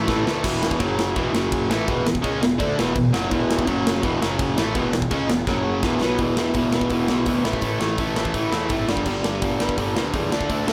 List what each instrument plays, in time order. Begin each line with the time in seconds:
0.07 picked electric bass A1, overdriven electric guitar A2 E3 A3, kick, snare
0.25 picked electric bass D2, overdriven electric guitar A2 E3 A3, snare
0.43 picked electric bass E1, overdriven electric guitar E2 B2 E3, kick, crash
0.63 snare
0.71 kick
0.79 picked electric bass F#1, overdriven electric guitar F#2 C#3 F#3, kick, crash
0.99 snare
1.15 picked electric bass E1, overdriven electric guitar E2 B2 E3, kick, crash
1.33 picked electric bass F#1, overdriven electric guitar F#2 C#3 F#3, snare
1.52 kick, crash
1.69 picked electric bass A1, overdriven electric guitar A2 E3 A3, snare
1.87 picked electric bass E1, overdriven electric guitar E2 B2 E3, kick, crash
2.05 picked electric bass E1, overdriven electric guitar E2 B2, snare
2.15 kick
2.22 picked electric bass C#2, overdriven electric guitar C#3 G#3 C#4, kick, crash
2.41 picked electric bass E1, overdriven electric guitar E2 B2, snare
2.58 picked electric bass D2, overdriven electric guitar D3 A3 D4, kick, crash
2.77 picked electric bass E1, overdriven electric guitar E2 B2 E3, snare
2.95 picked electric bass E1, overdriven electric guitar E2 B2, kick, crash
3.13 picked electric bass F#1, overdriven electric guitar F#2 C#3 F#3, snare
3.30 picked electric bass E1, overdriven electric guitar E2 B2 E3, kick, crash
3.51 snare
3.59 kick
3.66 picked electric bass F#1, overdriven electric guitar F#2 C#3 F#3, kick, crash
3.87 snare
4.03 picked electric bass E1, overdriven electric guitar E2 B2 E3, kick, crash
4.21 picked electric bass F#1, overdriven electric guitar F#2 C#3 F#3, snare
4.39 kick, crash
4.57 picked electric bass A1, overdriven electric guitar A2 E3 A3, snare
4.74 picked electric bass E1, overdriven electric guitar E2 B2 E3, kick, crash
4.93 picked electric bass E1, overdriven electric guitar E2 B2, snare
5.02 kick
5.11 picked electric bass C#2, overdriven electric guitar C#3 G#3 C#4, kick, crash
5.29 picked electric bass E1, overdriven electric guitar E2 B2, snare
5.47 picked electric bass F#1, overdriven electric guitar F#2 C#3 F#3, kick, snare
5.83 picked electric bass E1, overdriven electric guitar E2 B2 E3, kick, snare
6.01 picked electric bass B1, overdriven electric guitar B2 F#3 B3, snare
6.18 picked electric bass E1, overdriven electric guitar E2 B2 E3, kick, open hi-hat
6.37 picked electric bass E1, overdriven electric guitar E2 B2 E3, snare
6.54 picked electric bass E1, overdriven electric guitar E2 B2 E3, kick, open hi-hat
6.73 picked electric bass E1, overdriven electric guitar E2 B2 E3, snare
6.81 kick
6.90 picked electric bass E1, overdriven electric guitar E2 B2 E3, kick, open hi-hat
7.08 picked electric bass B1, overdriven electric guitar E2 B2 E3, snare
7.26 picked electric bass D2, overdriven electric guitar E2 B2 E3, kick, open hi-hat
7.44 picked electric bass A1, overdriven electric guitar A2 E3 A3, snare
7.53 kick
7.62 picked electric bass A1, overdriven electric guitar A2 E3 A3, kick, open hi-hat
7.80 picked electric bass A1, overdriven electric guitar A2 E3 A3, snare
7.98 picked electric bass A1, overdriven electric guitar A2 E3 A3, kick, open hi-hat
8.16 picked electric bass A1, overdriven electric guitar A2 E3 A3, snare
8.25 kick
8.34 picked electric bass A1, overdriven electric guitar A2 E3 A3, kick, open hi-hat
8.52 picked electric bass E2, overdriven electric guitar A2 E3 A3, snare
8.69 picked electric bass G#1, overdriven electric guitar A2 E3 A3, kick, open hi-hat
8.88 picked electric bass G1, overdriven electric guitar G2 D3 G3, snare
8.97 kick
9.06 picked electric bass G1, overdriven electric guitar G2 D3 G3, kick, crash
9.23 picked electric bass G1, overdriven electric guitar G2 D3 G3, snare
9.42 picked electric bass G1, overdriven electric guitar G2 D3 G3, kick, open hi-hat
9.60 picked electric bass G1, overdriven electric guitar G2 D3 G3, snare
9.69 kick
9.77 picked electric bass G1, overdriven electric guitar G2 D3 G3, kick, open hi-hat
9.95 picked electric bass D2, overdriven electric guitar G2 D3 G3, snare
10.13 picked electric bass E2, overdriven electric guitar G2 D3 G3, kick, open hi-hat
10.31 picked electric bass D2, overdriven electric guitar D3 A3 D4, snare
10.41 kick
10.49 picked electric bass D2, overdriven electric guitar D3 A3 D4, kick, open hi-hat
10.67 picked electric bass D2, overdriven electric guitar D3 A3 D4, snare